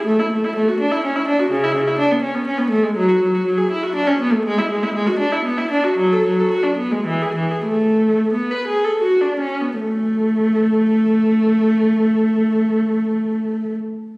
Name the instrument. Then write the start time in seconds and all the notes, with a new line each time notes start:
viola
0.05 A3
0.20 E4
0.32 A3
0.44 E4
0.56 A3
0.68 F#4
0.80 D4
0.92 E4
1.04 C#4
1.16 E4
1.27 D4
1.39 F#4
1.51 C#3
1.64 E4
1.75 C#3
1.88 E4
1.99 D4
2.11 B3
2.22 C#4
2.35 B3
2.47 C#4
2.58 B3
2.70 A3
2.83 G#3
2.96 F#3
3.09 F#4
3.23 F#3
3.35 F#4
3.46 F#3
3.58 G#4
3.71 E4
3.83 F#4
3.95 D4
4.08 C#4
4.21 B3
4.32 A3
4.45 G#3
4.58 E4
4.71 G#3
4.83 E4
4.94 G#3
5.07 F#4
5.19 D4
5.32 E4
5.45 B3
5.58 E4
5.71 D4
5.84 F#4
5.98 F#3
6.13 A4
6.26 F#3
6.40 A4
6.51 F#4
6.63 D4
6.77 B3
6.92 G#3
7.06 E3
7.22 G#4
7.36 E3
7.51 G#4
7.66 A3
8.33 B3
8.51 B4
8.68 G#4
8.85 A4
9.02 F#4
9.21 D4
9.40 C#4
9.61 B3
9.80 A3